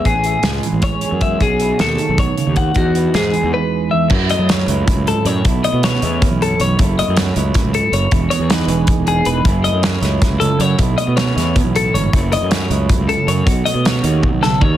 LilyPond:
<<
  \new Staff \with { instrumentName = "Clean electric guitar" } { \time 7/8 \key fis \dorian \tempo 4 = 157 gis'4 r4 cis''4 e''8 | gis'4 a'4 cis''4 fis''8 | fis'4 gis'4 b'4 e''8 | r8 dis''8 cis''4 r8 a'8 cis''8 |
r8 dis''8 cis''4 r8 a'8 cis''8 | r8 dis''8 cis''4 r8 a'8 cis''8 | r8 cis''8 b'4 r8 gis'8 b'8 | r8 dis''8 cis''4 r8 a'8 cis''8 |
r8 dis''8 cis''4 r8 a'8 cis''8 | r8 dis''8 cis''4 r8 a'8 cis''8 | r8 dis''8 cis''4 r8 a'8 cis''8 | }
  \new Staff \with { instrumentName = "Clean electric guitar" } { \time 7/8 \key fis \dorian << { b16 cis'16 gis'8 gis4 cis'8 gis'8 gis8 | cis'8 e'16 fis'16 a2~ a8 | dis'8 b'8 gis2~ gis8 | e'8 a8 cis'8 e'2 |
e'8 a8 b16 cis'16 e'4 cis'4 | e'8 a8 b16 cis'16 e'2 | e'16 fis'16 b8 dis'8 gis'4 dis'4 | e'8 a8 cis'8 e'4 cis'4 |
e'8 a8 b16 cis'16 e'2 | e'8 a8 cis'8 e'4 cis'4 | fis'8 a8 cis'8 fis'2 | } \\ { a,4. e4 e,4 | b,4. dis8 b,8 cis8 dis8 | e,4. e4. e,8 | fis,4. fis8 fis,8 gis,8 a,8 |
b,4. e4 fis,4 | fis,4. fis8 a,8 gis,8 fis,8 | e,4. e4 e,4 | fis,4. fis4 cis4 |
b,4. e8 b,8 a,8 gis,8 | fis,4. fis4 cis4 | b,4. dis8 b,8 cis8 dis8 | } >> }
  \new Staff \with { instrumentName = "Fingered electric bass" } { \clef bass \time 7/8 \key fis \dorian a,,4 cis,8 r16 a,,8 r8 fis,8. | b,,4 dis,8 r16 b,,8 r8 dis,8. | e,4 gis,8 r16 e,16 r4. | fis,8. fis8. cis,8 r16 cis,8 r16 fis,8 |
b,,8 r16 b,8. e,8. b,,8. b,,8 | fis,,8. fis,8. cis,8 r16 cis,8 r16 fis,,8 | e,,8 r16 e,8. e,,8. e,,8. e,,8 | fis,,8. fis,8. cis,8 r16 cis,8 r16 fis,8 |
b,,8 r16 b,8. e,8. b,,8. g,,8 | fis,,8. fis,8. cis,8 r16 cis,8 r16 fis,8 | b,,8 r16 b,8. dis,8. b,,8. dis,8 | }
  \new DrumStaff \with { instrumentName = "Drums" } \drummode { \time 7/8 <hh bd>8 hh8 <hh sn>8 hh8 <hh bd>8 hh8 <hh bd>8 | <hh bd>8 hh8 <hh sn>8 hh8 <hh bd>8 hh8 <hh bd>8 | <hh bd>8 hh8 <hh sn>8 hh8 r4. | <cymc bd>8 hh8 <hh sn>8 hh8 <hh bd>8 hh8 hh8 |
<hh bd>8 hh8 <hh sn>8 hh8 <hh bd>8 hh8 hh8 | <hh bd>8 hh8 <hh sn>8 hh8 <hh bd sn>8 hh8 hh8 | <hh bd>8 hh8 <hh sn>8 hh8 <hh bd>8 hh8 hh8 | <hh bd>8 hh8 <hh sn>8 <hh sn>8 <hh bd sn>8 hh8 hh8 |
<hh bd>8 hh8 <hh sn>8 <hh sn>8 <hh bd>8 hh8 hh8 | <hh bd>8 hh8 <hh sn>8 hh8 <hh bd>8 hh8 hh8 | <hh bd>8 hh8 <hh sn>8 hh8 <bd tommh>8 sn8 bd8 | }
>>